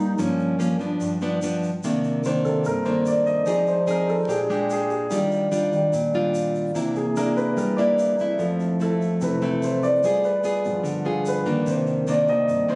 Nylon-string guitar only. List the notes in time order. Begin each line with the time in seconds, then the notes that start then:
Already playing: G2 G3 A#3 D#4
0.18 G2 F3 A#3 C#4
0.59 F3 A#3 C#4
0.79 F3 B3 D4
1.01 G2
1.22 F3 B3 D4
1.43 F3 B3 D4
1.84 C3 D#3 A#3 D4
2.26 D#3 A#3 D4
2.66 G2
2.86 D#3 A#3 D4
3.46 F3 C4 D#4 G#4
3.87 C4 D#4 G#4
4.27 A#2 G#3 D4 G4
4.50 G#3 D4 G4
5.10 D#3 G3 D4 F4
5.52 G3 D4 F4
5.93 A#2
6.14 G3 D4 F4
6.75 C3 A#3 D4 E4
7.17 A#3 D4 E4
7.57 G3
7.78 A#3 D4 E4
8.20 A3 C4 E4
8.39 F3
8.80 A3 C4 E4
9.21 C3
9.42 A3 C4 E4
10.04 G3 B3 F4 G#4
10.44 B3 F4 G#4
10.83 D3
11.05 B3 F4 G#4
11.46 D#3 A#3 D4
11.67 C3
12.07 D#3 A#3 D4
12.48 G2
12.68 D#3 A#3 D4